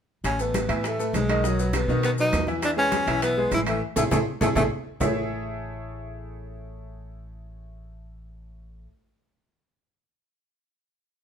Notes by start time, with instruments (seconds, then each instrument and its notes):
0.24 upright bass A1, tenor saxophone C#4, high bongo, high conga, high timbale, maracas
0.39 grand piano A3 A4 B4, tenor saxophone B3, high conga, maracas
0.54 high bongo, high conga, high timbale, maracas
0.69 upright bass A2, grand piano E3 E4 E5, high bongo, high conga, high timbale, maracas
0.84 tenor saxophone A3, high bongo, high conga, high timbale, maracas
0.99 grand piano A3 A4 B4, high bongo, high conga, maracas
1.13 upright bass B1, tenor saxophone G#3, high bongo, low bongo, high conga, high timbale, maracas
1.29 grand piano D#3 D#4 D#5, high bongo, high conga, high timbale, maracas
1.44 grand piano D#3 D#4 D#5, tenor saxophone F#3, high bongo, high conga, maracas
1.58 grand piano F#3 F#4 B4, high conga, maracas
1.73 tenor saxophone B3, high bongo, high conga, high timbale, maracas
1.88 upright bass B2, grand piano D#3 D#4 D#5, high bongo, high conga, maracas
2.03 tenor saxophone B3, high bongo, high conga, high timbale, maracas
2.18 grand piano F#3 F#4 B4, tenor saxophone D#4, high bongo, high conga, maracas
2.33 upright bass E2, high bongo, low bongo, high conga, high timbale, low timbale, maracas
2.47 grand piano E3 E4 E5, high bongo, high conga, maracas
2.62 tenor saxophone D4, high bongo, high conga, high timbale, maracas
2.76 grand piano G#3 G#4 B4, tenor saxophone C#4, high conga
2.92 high bongo, high conga, high timbale, maracas
3.07 upright bass B1, grand piano E3 E4 E5, high bongo, high conga, high timbale, maracas
3.22 tenor saxophone B3, high bongo, high conga, high timbale, maracas
3.37 grand piano G#3 G#4 B4, high bongo, high conga
3.51 upright bass A1, tenor saxophone E4, high bongo, low bongo, high conga, high timbale, maracas
3.66 grand piano E3 E4 E5, tenor saxophone A3, high bongo, high conga, high timbale, maracas
3.96 upright bass A1, tenor saxophone A3, grand piano E4 G#4 A4, low bongo, low conga, high timbale, maracas
4.11 upright bass A1, tenor saxophone A3, grand piano E4 G#4 A4, low bongo, low conga, high timbale, maracas
4.41 upright bass A1, tenor saxophone A3, grand piano E4 G#4 A4, low bongo, low conga, high timbale, maracas
4.55 upright bass A1, tenor saxophone A3, grand piano E4 G#4 A4, low bongo, low conga, high timbale, maracas
5.00 upright bass A1, grand piano A3 E4 G#4 A4 C#5 E5, low bongo, low conga, low timbale, maracas